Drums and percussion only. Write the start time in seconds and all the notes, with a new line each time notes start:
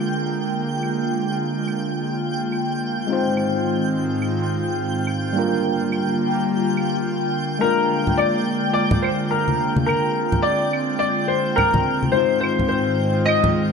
0.83 claves
1.68 claves
2.52 claves
3.37 claves
4.22 claves
5.07 claves
5.92 claves
6.77 claves
8.07 low conga
8.19 claves
8.91 low conga
9.04 claves
9.48 high conga
9.76 high conga
9.89 claves
10.32 low conga
10.73 claves
11.58 low conga, claves
11.74 high conga, low conga
12.03 high conga
12.43 claves
12.59 low conga
13.29 claves
13.44 low conga